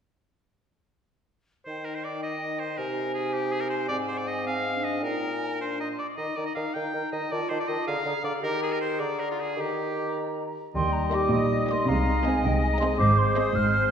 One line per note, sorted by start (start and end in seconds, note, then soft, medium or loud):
1.65 2.75 D#3 soft
1.65 3.86 D#4 soft
1.65 1.86 C5 medium
1.65 2.81 G5 soft
1.84 1.97 A#4 soft
1.95 2.06 C5 soft
2.04 2.22 D5 soft
2.23 2.61 D#5 medium
2.59 2.79 C5 soft
2.77 3.87 C3 soft
2.77 3.13 A#4 soft
2.77 3.90 G#5 soft
3.14 3.35 G#4 medium
3.34 3.54 G4 medium
3.52 3.62 G#4 medium
3.61 3.69 A#4 medium
3.70 3.87 C5 medium
3.88 5.04 G#2 medium
3.88 4.41 C4 soft
3.88 3.97 D5 medium
3.88 4.42 G#5 medium
4.07 4.19 C5 medium
4.18 4.29 D5 medium
4.28 4.46 D#5 medium
4.46 4.78 C4 medium
4.46 4.86 F5 medium
4.46 5.02 G#5 soft
4.77 5.06 D4 soft
4.84 5.03 D#5 medium
5.03 5.99 A#2 soft
5.03 5.62 D#4 soft
5.03 5.60 A#4 medium
5.03 5.35 G5 soft
5.34 5.61 G#5 soft
5.60 5.99 D4 soft
5.60 5.80 C5 soft
5.60 5.67 C6 soft
5.79 5.89 D#5 soft
5.79 5.84 A#5 soft
5.92 6.01 C6 soft
5.99 6.07 D5 soft
5.99 6.18 D6 soft
6.17 6.26 D#3 soft
6.17 6.37 D#4 soft
6.17 6.38 D#5 medium
6.17 6.37 A#5 soft
6.36 6.46 D#3 soft
6.36 6.56 D#4 soft
6.36 6.46 D5 medium
6.36 6.56 A#5 soft
6.46 6.54 D#5 medium
6.55 6.65 D#3 soft
6.55 6.76 D#4 soft
6.55 6.76 F5 medium
6.55 6.75 A#5 soft
6.74 6.84 D#3 soft
6.74 6.94 D#4 soft
6.74 7.12 G5 medium
6.74 6.94 A#5 soft
6.94 7.02 D#3 soft
6.94 7.13 D#4 soft
6.94 7.13 A#5 soft
7.12 7.21 D#3 soft
7.12 7.32 D#4 soft
7.12 7.33 D#5 medium
7.12 7.31 A#5 soft
7.32 7.40 D#3 soft
7.32 7.50 F4 soft
7.32 7.51 D5 medium
7.32 7.50 A5 soft
7.49 7.59 D#3 soft
7.49 7.68 F4 soft
7.49 7.59 C5 medium
7.49 7.69 A5 soft
7.60 7.69 D5 medium
7.68 7.77 D#3 soft
7.68 7.86 F4 soft
7.68 7.87 D#5 medium
7.68 7.87 A5 soft
7.87 7.96 D3 soft
7.87 8.04 G#4 soft
7.87 8.24 F5 medium
7.87 8.05 A#5 soft
8.05 8.14 D3 medium
8.05 8.22 G#4 soft
8.05 8.24 A#5 soft
8.22 8.32 D3 medium
8.22 8.40 G#4 soft
8.22 8.33 D5 medium
8.22 8.43 A#5 soft
8.40 9.02 D#3 medium
8.40 9.01 G4 medium
8.40 8.62 A#4 medium
8.40 8.75 A#5 medium
8.63 8.74 G#4 medium
8.72 8.80 A#4 medium
8.81 9.01 C5 medium
8.99 9.59 D3 medium
8.99 9.58 G#4 soft
8.99 9.21 D5 medium
8.99 9.56 A#5 soft
9.20 9.29 A#4 medium
9.31 9.42 F4 soft
9.41 9.62 G#4 medium
9.57 10.56 D#3 soft
9.57 10.55 G4 soft
9.57 10.54 A#5 soft
9.61 10.18 G4 soft
10.74 11.20 D#2 medium
10.74 11.20 D#3 medium
10.74 11.84 G3 soft
10.74 11.91 G3 soft
10.74 12.96 D#4 soft
10.74 12.95 D#5 medium
10.74 11.33 G5 medium
10.74 10.94 C6 medium
10.93 11.03 A#5 medium
11.05 11.16 C6 medium
11.12 11.27 A#3 medium
11.12 11.27 G4 medium
11.12 11.27 D#5 soft
11.12 11.32 D6 medium
11.32 11.77 A#1 medium
11.32 11.76 A#2 medium
11.32 11.87 D#5 medium
11.32 11.73 D#6 medium
11.68 11.84 A#3 medium
11.68 11.83 G4 medium
11.68 11.84 D#5 medium
11.68 11.90 C6 medium
11.88 12.33 C2 medium
11.88 12.33 C3 medium
11.88 13.00 G#3 medium
11.88 13.91 G#3 medium
11.88 12.43 F5 medium
11.88 12.27 A#5 medium
12.24 12.40 C4 medium
12.24 12.39 G#4 medium
12.24 12.39 D#5 medium
12.24 12.43 G#5 medium
12.44 12.88 C2 medium
12.44 12.88 C3 medium
12.44 12.98 D#5 medium
12.44 12.62 G5 medium
12.63 12.67 G#5 medium
12.73 12.77 A#5 medium
12.80 12.95 C4 medium
12.80 12.94 G#4 medium
12.80 12.95 D#5 medium
12.80 12.86 C6 medium
12.98 13.44 G#1 medium
12.98 13.44 G#2 medium
12.98 13.52 G#3 medium
12.98 13.52 C4 medium
12.98 13.91 C5 medium
12.98 13.20 D6 loud
13.18 13.26 C6 medium
13.27 13.31 D6 medium
13.35 13.51 C4 medium
13.35 13.51 G#4 medium
13.35 13.51 D#5 medium
13.35 13.57 D#6 medium
13.55 13.91 G#1 medium
13.55 13.91 G#2 medium
13.55 13.91 G#3 medium
13.55 13.91 C4 medium
13.55 13.91 F6 medium